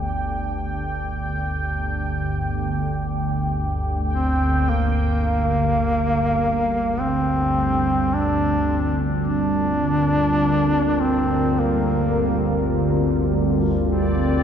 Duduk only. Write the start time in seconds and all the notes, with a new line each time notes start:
4.13 C4
4.70 A#3
7.00 C4
8.14 D4
9.28 D4
11.02 C4
11.60 A#3
13.89 C4